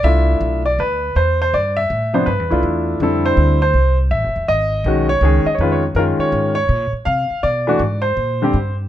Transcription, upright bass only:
0.03 0.40 C2 medium
0.41 0.77 B1 medium
0.79 1.15 D2 medium
1.16 1.52 E2 medium
1.53 1.89 G2 medium
1.90 2.26 A2 medium
2.27 2.40 G2 medium
2.40 2.51 E2 soft
2.51 2.62 C2 medium
2.63 2.99 E2 medium
3.00 3.37 F2 medium
3.37 3.73 D2 medium
3.74 4.10 C2 medium
4.11 4.24 A1 medium
4.24 4.35 F1 soft
4.36 4.48 E1 medium
4.49 4.84 G#1 medium
4.84 5.20 B1 medium
5.21 5.44 C#2 medium
5.45 muted upright bass stroke soft
5.58 5.94 F2 medium
5.95 6.18 F#2 medium
6.18 muted upright bass stroke soft
6.32 6.68 G#2 medium
6.69 6.92 A#2 medium
6.92 muted upright bass stroke soft
7.06 7.29 C3 medium
7.30 muted upright bass stroke soft
7.44 7.79 B2 medium
7.79 8.16 G#2 medium
8.17 8.53 A#2 medium
8.53 8.88 G2 medium

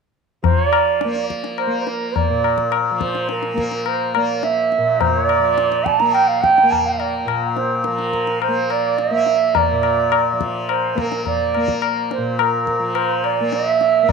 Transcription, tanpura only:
0.43 2.91 F3 medium
1.05 1.67 A#3 medium
1.67 3.54 A#3 soft
2.30 4.78 A#2 medium
2.91 5.39 F3 medium
3.54 4.16 A#3 medium
4.16 6.01 A#3 medium
4.78 7.25 A#2 medium
5.39 7.87 F3 soft
6.01 6.63 A#3 medium
6.63 8.48 A#3 medium
7.25 9.71 A#2 medium
7.87 10.32 F3 medium
8.48 9.11 A#3 soft
9.11 10.95 A#3 medium
9.71 12.17 A#2 medium
10.33 12.79 F3 medium
10.95 11.56 A#3 medium
11.56 13.40 A#3 medium
12.18 14.12 A#2 soft
12.79 14.12 F3 medium
13.40 14.03 A#3 medium
14.03 14.12 A#3 medium

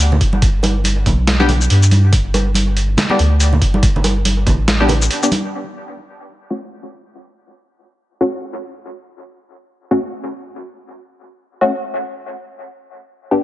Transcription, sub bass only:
0.00 0.20 D2 loud
0.21 1.05 G1 loud
1.06 1.69 B1 loud
1.70 2.11 G2 medium
2.13 2.96 G1 loud
3.19 3.60 D2 loud
3.62 4.45 G1 loud
4.47 5.09 A1 medium

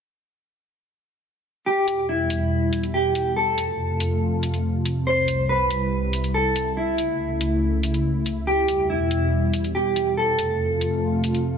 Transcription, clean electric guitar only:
1.66 2.03 G4 medium
2.09 2.86 E4 medium
2.94 3.31 G4 medium
3.36 4.98 A4 medium
5.07 5.44 C5 medium
5.49 6.26 B4 medium
6.34 6.71 A4 medium
6.77 8.39 E4 medium
8.47 8.84 G4 medium
8.90 9.66 E4 medium
9.75 10.12 G4 medium
10.17 11.58 A4 medium

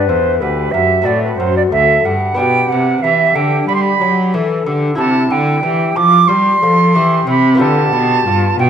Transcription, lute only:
0.00 1.02 G4 soft
0.09 0.38 E2 medium
0.42 0.71 D2 medium
0.74 1.03 F#2 medium
1.02 2.31 C4 medium
1.02 2.33 F#4 soft
1.06 1.36 A2 medium
1.40 1.69 F#2 medium
1.72 2.01 D2 medium
2.05 2.34 G2 medium
2.34 4.93 B3 medium
2.34 4.94 D4 medium
2.34 4.95 G4 medium
2.39 2.68 B2 medium
2.72 3.01 C3 medium
3.04 3.33 E3 medium
3.35 3.65 D3 medium
3.69 3.98 G3 medium
4.01 4.30 F#3 medium
4.34 4.63 E3 medium
4.66 4.95 D3 medium
4.95 5.28 C3 medium
4.95 7.54 E4 medium
4.95 7.55 G4 medium
5.30 5.60 D3 medium
5.63 5.93 E3 medium
5.96 6.26 F3 medium
6.29 6.58 G3 medium
6.63 6.92 F3 medium
6.95 7.24 E3 medium
7.27 7.56 C3 medium
7.55 8.70 B3 medium
7.55 8.70 F4 medium
7.55 8.70 G4 medium
7.59 7.89 D3 medium
7.93 8.22 B2 medium
8.27 8.56 G2 medium
8.59 8.70 B2 medium

